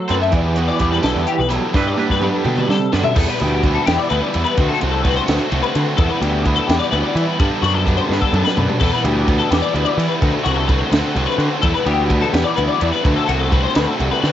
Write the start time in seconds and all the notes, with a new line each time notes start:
Already playing: F#3 A3 E4 A4 C5
0.08 F#2 A3 C4 D4 A4 B4 C5, closed hi-hat
0.21 E5
0.31 E2 E3 B3 E4 G4 D5, kick, closed hi-hat
0.56 E3 B3 E4 F#4 G4 B4, closed hi-hat
0.68 D5
0.79 E2 E3 G3 B3 E4 G4, kick, closed hi-hat
0.91 B4
1.02 B1 D3 E3 B3 E4 G4 A4, snare, closed hi-hat
1.15 E2
1.27 E3 G4, closed hi-hat
1.38 B1 B4
1.49 E3 F#3 B3 E4 G4 A4, closed hi-hat
1.74 G2 G3 B3 D4 E4 G4 B4, kick, snare
1.87 D5
1.97 G3 B3 D4 G4 B4, high tom
2.10 G2 B4, kick
2.21 G3 B3 D4 G4 B4, mid tom
2.35 A4
2.44 B2 G3 B3 D4 G4, mid tom
2.58 B4, mid tom
2.68 C3 G3 A4, snare
2.92 F#2 D3 G3 B3 D4 G4 B4, snare
3.04 E5, floor tom
3.14 E2 E3 G3 B3 E4 A4, kick, crash
3.28 B4
3.39 D2 G3 B3 E4 G4, ride
3.63 E3 G3 B3 E4, kick, ride
3.75 A4
3.86 E2 B3 E4 G4, snare, ride
3.90 G3
3.98 D5
4.09 D2 E3 G3 B3 B4, ride
4.14 E4
4.21 D5
4.33 E2 G3 B3 E4, ride
4.44 B4
4.56 D2 D3 A3 C4 F#4, kick, ride
4.68 A4
4.80 C2 C4 F#4, ride
4.84 A3
4.91 A4
5.03 D3 A3 C4 B4, kick, ride
5.07 F#4
5.16 C5
5.26 D2 C4 F#4 B4, snare, ride
5.30 A3
5.39 A4
5.50 C2 D3 A3 C4 F#4, ride
5.63 B4
5.75 D3 A3 C4 F#4, ride
5.97 E2 E3 G3 B3 E4 A4, kick, ride
6.09 B4
6.20 D2 G3 B3 E4 G4, ride
6.44 E3 G3 B3 E4, kick, ride
6.56 A4
6.67 E2 B3 E4 G4, snare, ride
6.71 G3
6.79 D5
6.91 D2 E3 G3 B3 E4 B4, ride
7.02 D5
7.15 E3 G3 B3 E4, ride
7.26 B4
7.37 G2 D3 G3 B3, kick, ride
7.42 D4
7.49 A4
7.62 F#2 G3 B3 D4 F#4, ride
7.74 A4
7.85 D3 G3 B3 D4 B4, kick, ride
7.97 C5
8.09 G2 G3 B3 D4 B4, snare
8.21 A4, kick
8.33 F#2 D3 G3 B3, mid tom
8.37 D4
8.44 B4, snare
8.55 F#2 G3 B3 D4, floor tom
8.70 floor tom
8.79 E2 E3 G3 B3 E4 A4, kick, crash
8.92 B4
9.03 D2 G3 B3 E4 G4, ride
9.26 E3 G3 B3 E4, kick, ride
9.39 A4
9.50 E2 B3 E4 G4, snare, ride
9.54 G3
9.62 D5
9.73 D2 E3 G3 B3 E4 B4, ride
9.85 D5
9.97 E3 G3 B3 E4, ride
10.08 B4
10.21 D2 D3 A3 C4 F#4, kick, ride
10.33 A4
10.44 C2 F#4, ride
10.48 A3 C4
10.56 A4
10.68 D3 A3 C4 B4, kick, ride
10.72 F#4
10.79 C5
10.91 D2 C4 F#4 B4, snare, ride
10.96 A3
11.03 A4
11.15 C2 D3 A3 C4, ride
11.19 F#4
11.26 B4
11.38 D3 A3 C4 F#4, ride
11.61 E2 E3 G3 B3 E4 A4, kick, ride
11.74 B4
11.84 D2 G3 B3 E4 G4, ride
12.07 E3 G3 B3 E4, kick, ride
12.22 A4
12.31 E2 G3 B3 E4 G4, ride
12.35 snare
12.44 D5
12.54 D2 E3 G3 B3 E4 B4, ride
12.68 D5
12.80 E2 G3 B3 E4, ride
12.92 B4
13.02 D2 D3 A3 C4 F#4, kick, ride
13.16 A4
13.26 C2 A3 C4 F#4, ride
13.39 A4
13.50 D3 A3 C4 F#4 B4, kick, ride
13.64 C5
13.75 D2 A3 C4 F#4 B4, snare, ride
13.87 A4
13.97 C2 D3 A3 C4 F#4, ride
14.11 B4
14.22 D3 A3 C4 F#4, snare